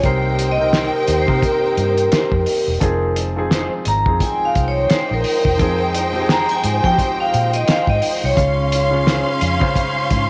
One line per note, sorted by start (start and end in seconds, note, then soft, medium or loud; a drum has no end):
0.03 0.89 C2 loud
0.03 0.52 C3 medium
0.03 2.79 D#3 medium
0.03 2.79 A#3 medium
0.03 0.52 C4 medium
0.03 10.30 D#4 medium
0.03 2.78 D#4 medium
0.03 0.53 D#4 medium
0.03 2.79 G4 medium
0.03 0.53 A#4 medium
0.03 2.78 C5 medium
0.03 0.52 C5 medium
0.03 2.78 G5 medium
0.03 kick loud
0.03 closed hi-hat medium
0.39 closed hi-hat medium
0.52 0.62 D#5 medium
0.58 1.19 C3 medium
0.58 1.20 C4 medium
0.58 1.20 D#4 medium
0.58 1.21 A#4 medium
0.73 0.92 D#4 medium
0.73 0.93 A#4 medium
0.73 1.22 A#4 medium
0.73 0.93 C5 medium
0.73 snare loud
0.73 closed hi-hat medium
1.08 1.25 D#2 medium
1.08 closed hi-hat medium
1.22 1.42 C5 medium
1.26 2.49 C3 medium
1.26 1.41 C3 medium
1.26 2.50 C4 medium
1.26 2.50 D#4 medium
1.26 2.50 A#4 medium
1.26 kick medium
1.42 3.14 A#4 medium
1.42 kick medium
1.42 closed hi-hat medium
1.77 2.07 G2 medium
1.77 closed hi-hat medium
1.98 closed hi-hat medium
2.12 2.31 D#4 medium
2.12 2.32 A#4 medium
2.12 2.32 C5 medium
2.12 muted fingered electric bass stroke soft
2.12 snare loud
2.12 closed hi-hat medium
2.32 2.45 F2 medium
2.32 kick medium
2.46 open hi-hat medium
2.68 2.80 E1 medium
2.80 3.67 F1 medium
2.80 8.33 D#3 medium
2.80 3.30 F3 medium
2.80 10.30 G#3 medium
2.80 3.30 C4 medium
2.80 3.30 D#4 medium
2.80 10.30 F4 medium
2.80 3.31 G#4 loud
2.80 kick loud
2.80 closed hi-hat medium
3.16 closed hi-hat medium
3.36 3.97 F3 medium
3.36 3.97 C4 medium
3.36 3.98 D#4 medium
3.36 3.98 G#4 medium
3.50 3.70 D#4 medium
3.50 3.70 G#4 medium
3.50 3.71 C5 medium
3.50 snare loud
3.50 closed hi-hat medium
3.85 4.04 G#1 medium
3.85 4.19 A#5 loud
3.85 closed hi-hat medium
4.05 4.19 F2 medium
4.05 5.27 F3 medium
4.05 5.28 C4 medium
4.05 5.28 D#4 medium
4.05 5.29 G#4 medium
4.05 kick loud
4.20 8.33 D#4 medium
4.20 8.33 C5 medium
4.20 8.33 G5 loud
4.20 4.45 G#5 medium
4.20 kick medium
4.20 closed hi-hat medium
4.45 4.68 F5 medium
4.55 4.86 C2 medium
4.55 kick medium
4.55 closed hi-hat medium
4.68 4.91 C#5 medium
4.90 5.09 D#4 medium
4.90 5.09 G#4 medium
4.90 5.14 C5 medium
4.90 5.10 C5 medium
4.90 muted fingered electric bass stroke soft
4.90 snare loud
4.90 closed hi-hat medium
5.11 5.23 A#1 medium
5.11 5.79 A#4 medium
5.24 open hi-hat medium
5.45 5.61 E1 medium
5.45 kick medium
5.58 6.45 F2 medium
5.58 6.07 F3 medium
5.58 6.08 C4 medium
5.58 6.08 D#4 medium
5.58 6.09 G#4 medium
5.58 kick loud
5.58 closed hi-hat medium
5.95 closed hi-hat medium
6.12 6.74 F3 medium
6.12 6.75 C4 medium
6.12 6.75 D#4 medium
6.12 6.20 G4 medium
6.22 6.79 G#4 medium
6.29 6.48 D#4 medium
6.29 6.48 G#4 medium
6.29 6.49 C5 medium
6.29 6.51 A#5 loud
6.29 snare loud
6.29 closed hi-hat medium
6.49 6.82 G#5 medium
6.49 closed hi-hat soft
6.64 6.81 G#2 medium
6.64 closed hi-hat medium
6.83 8.05 F3 medium
6.83 6.97 F3 medium
6.83 8.05 C4 medium
6.83 8.05 D#4 medium
6.83 6.90 F#4 medium
6.83 7.20 G5 loud
6.83 kick loud
6.92 8.09 G4 medium
6.98 kick medium
6.98 closed hi-hat medium
7.20 7.55 F5 medium
7.34 7.64 A#2 medium
7.34 closed hi-hat medium
7.53 7.69 D#5 medium
7.53 closed hi-hat medium
7.68 7.87 D#4 medium
7.68 7.87 G#4 medium
7.68 7.88 C5 medium
7.68 7.78 F5 medium
7.68 muted fingered electric bass stroke soft
7.68 snare loud
7.68 closed hi-hat loud
7.87 8.00 G#2 medium
7.87 8.05 D#5 medium
7.87 kick medium
8.02 open hi-hat medium
8.24 8.36 C2 medium
8.24 9.24 C#5 medium
8.35 9.23 C#2 loud
8.35 8.85 C#3 medium
8.35 10.30 C#3 medium
8.35 8.85 C#4 medium
8.35 10.30 C#4 medium
8.35 8.86 F4 medium
8.35 8.86 C#5 medium
8.35 10.30 F5 medium
8.35 10.30 C6 medium
8.35 kick loud
8.35 closed hi-hat medium
8.72 closed hi-hat loud
8.91 9.52 C#3 medium
8.91 9.53 C#4 medium
8.91 9.53 F4 medium
8.91 9.54 C#5 medium
9.06 9.25 F4 medium
9.06 9.26 G#4 medium
9.06 9.26 C5 medium
9.06 snare loud
9.06 closed hi-hat medium
9.41 9.59 F2 medium
9.41 closed hi-hat medium
9.60 10.30 C#3 medium
9.60 9.74 C#3 medium
9.60 10.30 C#4 medium
9.60 10.30 F4 medium
9.60 10.30 C5 loud
9.60 kick loud
9.76 kick medium
9.76 closed hi-hat medium
10.11 10.30 G#2 medium
10.11 kick medium
10.11 closed hi-hat medium